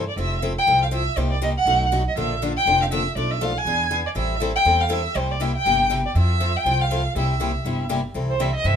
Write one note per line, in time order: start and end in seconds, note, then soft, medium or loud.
0.09 0.17 D5 medium
0.16 0.56 F1 medium
0.16 0.35 F3 medium
0.16 0.35 C4 medium
0.16 0.36 E4 medium
0.16 0.36 A4 medium
0.16 0.41 E5 medium
0.42 0.52 F3 medium
0.42 0.52 C4 medium
0.42 0.52 E4 medium
0.42 0.52 A4 medium
0.58 0.80 G5 loud
0.67 1.06 C2 medium
0.67 0.85 F3 medium
0.67 0.85 C4 medium
0.67 0.85 E4 medium
0.67 0.85 A4 medium
0.82 0.87 F5 medium
0.91 1.02 F3 medium
0.91 1.02 C4 medium
0.91 1.02 E4 medium
0.91 1.02 A4 medium
0.91 1.19 E5 medium
1.16 1.56 C2 medium
1.16 1.34 C3 medium
1.16 1.35 G3 medium
1.16 1.35 A#3 medium
1.16 1.35 D#4 medium
1.16 1.35 G4 medium
1.16 1.31 C5 medium
1.31 1.41 D5 medium
1.42 1.52 C3 medium
1.42 1.52 G3 medium
1.42 1.52 A#3 loud
1.42 1.52 D#4 medium
1.42 1.52 G4 medium
1.42 1.49 D#5 medium
1.57 1.90 F#5 loud
1.65 2.06 B1 medium
1.65 1.85 B2 medium
1.65 1.85 F#3 medium
1.65 1.85 A3 medium
1.65 1.85 D#4 medium
1.65 1.85 F#4 medium
1.92 2.02 B2 medium
1.92 2.02 F#3 loud
1.92 2.02 A3 medium
1.92 2.02 D#4 medium
1.92 2.02 F#4 loud
2.08 2.17 D#5 medium
2.16 2.56 A#1 medium
2.16 2.35 D3 medium
2.16 2.35 F3 medium
2.16 2.35 A#3 medium
2.16 2.35 D4 medium
2.16 2.35 A4 medium
2.16 2.40 E5 medium
2.42 2.52 D3 medium
2.42 2.52 F3 loud
2.42 2.52 A#3 medium
2.42 2.52 D4 medium
2.42 2.52 A4 loud
2.57 2.79 G5 loud
2.66 3.06 F1 medium
2.66 2.84 D3 medium
2.66 2.85 F3 medium
2.66 2.85 A#3 medium
2.66 2.85 D4 medium
2.66 2.85 A4 medium
2.81 2.86 F5 medium
2.91 3.02 D3 medium
2.91 3.02 F3 medium
2.91 3.02 A#3 loud
2.91 3.02 D4 medium
2.91 3.02 A4 loud
2.91 3.15 E5 loud
3.15 3.56 B1 medium
3.15 3.34 B2 medium
3.15 3.34 F3 medium
3.15 3.35 A3 medium
3.15 3.35 D4 medium
3.15 3.35 A4 medium
3.15 3.32 D5 medium
3.31 3.44 E5 medium
3.41 3.51 B2 medium
3.41 3.51 F3 medium
3.41 3.51 A3 medium
3.41 3.52 D4 medium
3.41 3.52 A4 medium
3.41 3.59 F5 medium
3.57 3.92 G#5 loud
3.65 4.05 E2 medium
3.65 3.84 E3 medium
3.65 3.84 B3 medium
3.65 3.84 D4 medium
3.65 3.85 G#4 medium
3.91 4.01 E3 medium
3.91 4.01 B3 medium
3.91 4.01 D4 medium
3.91 4.01 G#4 loud
4.06 4.11 D5 medium
4.15 4.55 A1 medium
4.15 4.34 E3 medium
4.15 4.34 G3 medium
4.15 4.34 C4 medium
4.15 4.34 E4 medium
4.15 4.34 A4 medium
4.15 4.39 E5 loud
4.40 4.51 E3 medium
4.40 4.51 G3 medium
4.40 4.51 C4 medium
4.40 4.51 E4 medium
4.40 4.51 A4 loud
4.55 4.82 G5 loud
4.65 5.05 E2 medium
4.65 4.83 E3 medium
4.65 4.84 G3 medium
4.65 4.84 C4 medium
4.65 4.84 E4 medium
4.65 4.84 A4 medium
4.80 4.94 F5 medium
4.89 5.00 E3 medium
4.89 5.01 G3 medium
4.89 5.01 C4 medium
4.89 5.00 E4 loud
4.89 5.00 A4 loud
4.89 5.18 E5 loud
5.15 5.55 C2 medium
5.15 5.33 C3 medium
5.15 5.33 G3 medium
5.15 5.34 A#3 medium
5.15 5.34 E4 medium
5.15 5.34 G4 medium
5.15 5.33 C5 medium
5.31 5.43 D5 medium
5.40 5.51 C3 medium
5.40 5.51 G3 medium
5.40 5.51 A#3 loud
5.40 5.51 E4 loud
5.40 5.51 G4 loud
5.40 5.55 E5 medium
5.56 5.89 G5 loud
5.65 6.05 G1 medium
5.65 5.84 C3 medium
5.65 5.84 G3 medium
5.65 5.84 A#3 medium
5.65 5.84 E4 medium
5.65 5.84 G4 medium
5.90 6.00 C3 loud
5.90 6.01 G3 medium
5.90 6.01 A#3 medium
5.90 6.01 E4 loud
5.90 6.01 G4 loud
6.06 6.15 D5 medium
6.15 6.55 F2 medium
6.15 6.34 F3 medium
6.15 6.34 C4 medium
6.15 6.34 E4 medium
6.15 6.34 A4 medium
6.15 6.57 E5 loud
6.40 6.51 F3 medium
6.40 6.51 C4 medium
6.40 6.51 E4 medium
6.40 6.51 A4 medium
6.56 6.82 G5 loud
6.65 7.05 C2 medium
6.65 6.84 F3 medium
6.65 6.84 C4 medium
6.65 6.84 E4 medium
6.65 6.84 A4 medium
6.81 7.16 F5 medium
6.91 7.01 F3 medium
6.91 7.01 C4 medium
6.91 7.01 E4 medium
6.91 7.01 A4 medium
7.15 7.55 C2 medium
7.15 7.34 C3 medium
7.15 7.34 G3 medium
7.15 7.34 A#3 medium
7.15 7.34 E4 medium
7.15 7.34 G4 medium
7.15 7.87 E5 medium
7.40 7.50 C3 medium
7.40 7.51 G3 medium
7.40 7.51 A#3 medium
7.40 7.51 E4 medium
7.40 7.51 G4 medium
7.65 8.05 G1 medium
7.65 7.83 C3 medium
7.65 7.83 G3 medium
7.65 7.84 A#3 medium
7.65 7.84 E4 medium
7.65 7.84 G4 medium
7.89 8.00 C3 medium
7.89 8.00 G3 medium
7.89 8.00 A#3 medium
7.89 8.00 E4 loud
7.89 8.00 G4 loud
8.14 8.54 C2 medium
8.14 8.33 C3 medium
8.14 8.33 E3 medium
8.14 8.33 G3 medium
8.14 8.33 C4 medium
8.14 8.33 E4 medium
8.14 8.33 A4 medium
8.30 8.43 C5 medium
8.40 8.50 C3 medium
8.40 8.50 E3 medium
8.40 8.50 G3 medium
8.40 8.50 C4 medium
8.40 8.50 E4 medium
8.40 8.50 A4 medium
8.40 8.54 E5 medium
8.55 8.67 D#5 medium
8.64 8.76 G2 medium
8.64 8.76 C3 medium
8.64 8.76 E3 medium
8.64 8.76 G3 medium
8.64 8.76 C4 medium
8.64 8.76 E4 medium
8.64 8.76 A4 medium
8.64 8.76 E5 medium